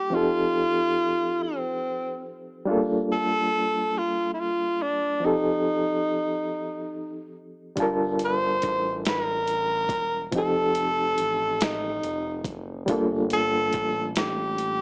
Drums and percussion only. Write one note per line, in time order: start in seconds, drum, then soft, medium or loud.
7.77 kick loud
7.77 closed hi-hat medium
8.19 closed hi-hat medium
8.62 kick medium
8.62 closed hi-hat soft
9.05 snare loud
9.05 closed hi-hat medium
9.48 closed hi-hat soft
9.89 kick loud
9.89 closed hi-hat soft
10.32 kick loud
10.32 closed hi-hat medium
10.75 closed hi-hat medium
11.18 closed hi-hat medium
11.61 snare loud
11.61 closed hi-hat medium
12.03 closed hi-hat soft
12.44 kick loud
12.44 closed hi-hat soft
12.88 kick loud
12.88 closed hi-hat medium
13.30 closed hi-hat medium
13.73 kick medium
13.73 closed hi-hat medium
14.16 snare loud
14.16 closed hi-hat medium
14.58 closed hi-hat soft